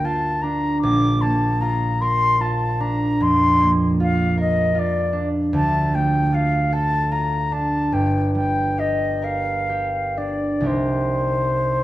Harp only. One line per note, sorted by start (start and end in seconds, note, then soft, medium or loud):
0.00 0.86 D2 soft
0.00 1.21 A#3 soft
0.00 0.42 D4 soft
0.00 2.00 A#4 medium
0.04 1.61 F4 medium
0.43 2.79 D4 soft
0.83 4.73 A#1 medium
1.22 3.60 A#3 soft
1.62 2.39 F4 soft
2.02 4.36 A#4 medium
2.40 3.99 F4 soft
2.80 5.12 D4 medium
3.20 5.57 F2 soft
3.61 5.57 A#3 soft
4.00 4.74 F4 medium
4.38 5.57 A#4 soft
4.75 6.31 F4 medium
5.13 7.50 D4 soft
5.53 7.96 D2 medium
5.94 7.96 A3 medium
6.32 7.10 F4 soft
6.72 7.96 A4 medium
7.11 10.71 F4 soft
7.52 10.16 D4 soft
7.92 10.71 G1 medium
8.35 10.60 G3 soft
8.78 9.68 G4 soft
9.22 10.63 A#4 soft
9.69 10.63 G4 soft
10.18 10.71 D4 soft
10.61 11.84 C2 soft
10.61 11.84 G3 soft
10.61 11.84 D#4 soft
10.61 11.84 G4 soft
10.65 11.84 A#4 soft